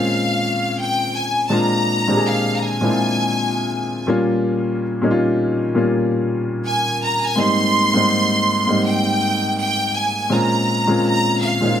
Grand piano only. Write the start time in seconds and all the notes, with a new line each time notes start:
Already playing: A#2 G#3 C4 C#4 F4 G4
1.49 A#2 G#3 C4 D4 F4
2.08 A#2 G#3 C4 D4 G4
2.17 G#4
2.81 A#2 G#3 C4 D4 E4
2.90 F4
4.07 A#2 G3 A#3 C#4 F4
5.02 A#2 G3 A#3 C#4 D#4
5.11 F4
5.75 A#2 G3 A#3 C#4 F4
7.36 G#2 G3 A#3 C4 D#4
7.94 G#2 G3 A#3 C4 D#4
8.67 G#2 G3 A#3 C4 D#4
10.30 A#2 G#3 C4 C#4 F4
10.87 A#2 G#3 C4 C#4 F4
11.61 A#2 G#3 C4 C#4 D#4
11.70 F4